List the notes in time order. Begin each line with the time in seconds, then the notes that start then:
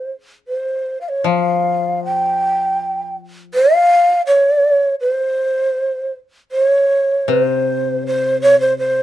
0.48 C5
1.01 F5
1.09 C#5
1.24 F3 F5
2.05 G5
3.54 C#5
3.76 F5
4.27 C#5
5.01 C5
6.52 C5
6.64 C#5
7.28 C3 B4
7.42 C5
8.07 C5
8.42 C#5
8.60 C5
8.79 C5